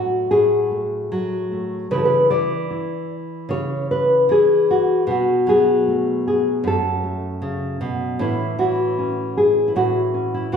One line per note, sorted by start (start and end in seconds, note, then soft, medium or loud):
0.00 0.30 A2 medium
0.00 1.10 F#3 medium
0.00 0.70 A3 soft
0.00 0.30 F#4 medium
0.31 1.86 A2 medium
0.31 1.91 G#4 medium
0.71 1.50 A3 soft
1.12 1.87 F#3 medium
1.52 1.91 A3 soft
1.91 2.31 C#3 medium
1.91 2.30 E3 soft
1.91 2.69 E4 soft
1.91 2.04 B4 medium
1.98 2.05 A4 medium
2.05 2.30 B4 medium
2.30 4.28 E3 soft
2.30 3.10 D5 medium
2.70 5.03 E4 soft
3.49 4.29 C#3 medium
3.49 3.90 C#5 loud
3.91 4.69 B4 medium
4.29 5.08 E3 medium
4.29 5.09 G#4 medium
4.71 5.09 F#4 medium
5.07 6.64 B2 medium
5.07 5.48 F#4 medium
5.47 8.14 F#3 medium
5.47 6.26 G#4 medium
5.88 7.03 A3 soft
6.28 6.66 G#4 medium
6.64 8.19 F#2 medium
6.64 8.21 A4 medium
7.03 8.20 A3 soft
7.42 7.80 C#3 medium
7.81 8.19 B2 medium
8.19 9.75 A2 medium
8.19 8.57 E3 medium
8.19 8.97 C#4 medium
8.19 9.37 E4 medium
8.59 10.51 E3 medium
8.59 9.36 F#4 medium
8.98 10.13 C#4 soft
9.37 9.76 G#4 medium
9.68 10.33 E4 medium
9.76 10.57 A2 medium
9.76 10.52 F#4 loud
10.14 10.57 C#4 soft
10.34 10.57 E4 medium
10.52 10.57 E3 medium
10.52 10.57 F#4 medium